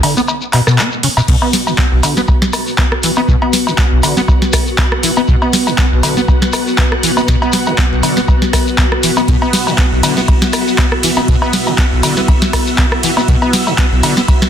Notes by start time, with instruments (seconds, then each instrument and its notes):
0.03 acid bass D3, open hi-hat, cowbell
0.17 acid bass B3, shekere
0.28 cowbell, shekere
0.41 shekere
0.53 acid bass B2, clap, open hi-hat, cowbell
0.67 acid bass B2, cross-stick, shekere
0.78 acid bass B3, clap, cowbell, shekere
0.92 shekere
1.03 acid bass C#3, open hi-hat
1.17 acid bass B2, cowbell, shekere
1.28 acid bass B2, string machine B3 F#4 F#5, kick, crash, shekere
1.42 acid bass B3, cowbell
1.53 snare, open hi-hat, shekere
1.67 acid bass C#3, cowbell, shekere
1.78 acid bass B3, kick, clap, shekere
1.92 acid bass B1
2.03 acid bass D3, open hi-hat, cowbell, shekere
2.17 acid bass B3, snare, shekere
2.28 kick, cowbell, shekere
2.42 snare
2.53 cross-stick, open hi-hat, cowbell, shekere
2.67 shekere
2.78 acid bass B3, kick, clap, cowbell, shekere
2.92 cross-stick
3.03 acid bass E3, open hi-hat, shekere
3.16 acid bass B3, cowbell, shekere
3.28 acid bass B2, kick, shekere
3.42 acid bass B3, cowbell
3.53 snare, open hi-hat, shekere
3.67 acid bass C#3, cowbell, shekere
3.78 acid bass B3, kick, clap, shekere
3.92 acid bass B1
4.03 acid bass D3, open hi-hat, cowbell, shekere
4.17 acid bass B3, snare, shekere
4.28 kick, cowbell, shekere
4.42 snare
4.53 kick, cross-stick, open hi-hat, cowbell, shekere
4.67 shekere
4.78 acid bass B3, kick, clap, cowbell, shekere
4.92 cross-stick
5.03 acid bass E3, open hi-hat, shekere
5.17 acid bass B3, cowbell, shekere
5.28 acid bass B2, kick, shekere
5.42 acid bass B3, cowbell
5.53 snare, open hi-hat, shekere
5.67 acid bass C#3, cowbell, shekere
5.78 acid bass B3, kick, clap, shekere
5.92 acid bass B1
6.03 acid bass D3, open hi-hat, cowbell, shekere
6.17 acid bass B3, snare, shekere
6.28 kick, cowbell, shekere
6.42 snare
6.53 cross-stick, open hi-hat, cowbell, shekere
6.67 shekere
6.78 acid bass B3, kick, clap, cowbell, shekere
6.92 cross-stick
7.03 acid bass E3, open hi-hat, shekere
7.17 acid bass B3, cowbell, shekere
7.28 acid bass B2, kick, snare, shekere
7.42 acid bass B3, cowbell
7.52 snare, open hi-hat, shekere
7.66 acid bass C#3, cowbell, shekere
7.78 acid bass B3, kick, clap, shekere
7.92 acid bass B1
8.03 acid bass D3, open hi-hat, cowbell, shekere
8.17 acid bass B3, snare, shekere
8.28 kick, cowbell, shekere
8.42 snare
8.53 kick, cross-stick, snare, open hi-hat, cowbell, shekere
8.67 shekere
8.78 acid bass B3, kick, clap, cowbell, shekere
8.92 cross-stick
9.03 acid bass E3, open hi-hat, shekere
9.17 acid bass B3, cowbell, shekere
9.28 acid bass B2, string machine E5, kick, ride, shekere
9.42 acid bass B3, cowbell
9.53 snare, open hi-hat, ride, shekere
9.67 acid bass C#3, cowbell, shekere
9.78 acid bass B3, kick, clap, ride, shekere
9.92 acid bass B1
10.03 acid bass D3, open hi-hat, ride, cowbell, shekere
10.17 acid bass B3, snare, shekere
10.27 kick, ride, cowbell, shekere
10.42 snare
10.53 cross-stick, open hi-hat, ride, cowbell, shekere
10.68 shekere
10.78 acid bass B3, kick, clap, ride, cowbell, shekere
10.92 cross-stick
11.03 acid bass E3, open hi-hat, ride, shekere
11.16 acid bass B3, cowbell, shekere
11.28 acid bass B2, kick, ride, shekere
11.42 acid bass B3, cowbell
11.53 snare, open hi-hat, ride, shekere
11.67 acid bass C#3, cowbell, shekere
11.78 acid bass B3, kick, clap, ride, shekere
11.92 acid bass B1
12.03 acid bass D3, open hi-hat, ride, cowbell, shekere
12.17 acid bass B3, snare, shekere
12.28 kick, ride, cowbell, shekere
12.42 snare
12.53 kick, cross-stick, open hi-hat, ride, cowbell, shekere
12.67 shekere
12.78 acid bass B3, kick, clap, ride, cowbell, shekere
12.92 cross-stick
13.03 acid bass E3, open hi-hat, ride, shekere
13.17 acid bass B3, cowbell, shekere
13.28 acid bass B2, kick, ride, shekere
13.42 acid bass B3, cowbell
13.53 snare, open hi-hat, ride, shekere
13.67 acid bass C#3, cowbell, shekere
13.78 acid bass B3, kick, clap, ride, shekere
13.92 acid bass B1
14.03 acid bass D3, open hi-hat, ride, cowbell, shekere
14.17 acid bass B3, snare, shekere
14.28 kick, ride, cowbell, shekere
14.42 snare